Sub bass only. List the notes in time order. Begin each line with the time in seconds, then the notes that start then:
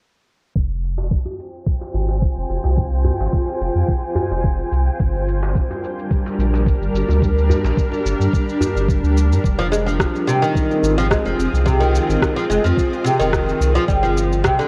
0.55 F1
1.94 G#1
2.37 F1
2.49 F1
2.65 C2
3.20 G#1
3.61 F1
3.75 F2
4.31 F1
4.72 C2
5.00 G1
6.38 A#1
6.81 G1
6.93 G1
7.08 D2
7.64 A#1
8.05 G1
8.20 G2
8.76 G1
9.03 D2
9.31 G2
9.44 F1
10.82 G#1
11.25 F1
11.38 F1
11.53 C2
12.09 G#1
12.49 F1
12.64 F2
13.20 F1
13.60 C2
13.88 G1